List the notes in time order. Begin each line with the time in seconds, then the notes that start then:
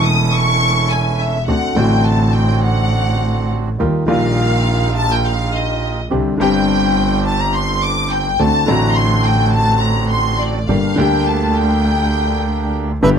Already playing: E1 E2 E3 A3 C#4 E4 A4
0.04 D#6
0.33 C#6
0.91 G#5
1.19 E5
1.47 D2 D3 A3 C4 D4 F#4 F#5
1.75 A1 A2 D3 A3 C4 D4 F#4 G5
2.05 A5
2.34 G5
2.64 F#5
3.79 D#2 D#3 G3 A#3 D#4 F4 G4
4.06 A#1 A#2 D#3 G3 A#3 D#4 F4 G4 F5
4.97 A5
5.12 G5
5.26 F5
5.54 D#5
6.10 C2 C3 D3 G3 C4 D4 G4
6.38 G1 G2 D3 G3 C4 D4 G4
6.42 G5
7.27 A5
7.41 A#5
7.55 C6
7.83 D6
8.11 G5
8.39 D2 D3 A3 C4 D4 F#4 A5
8.66 A1 A2 D3 A3 C4 D4 F#4 A#5
8.70 F#4
8.97 C6
9.25 G5
9.54 A5
9.82 A#5
10.12 C6
10.40 D5
10.68 G1 G2 D3 G3 A#3 D4 G4 F5
10.96 D2 D3 G3 A#3 D4 G4 G5
11.27 A5
11.55 G5
13.02 G1 G2 D3 G3 B3 D4 G4 B4 E5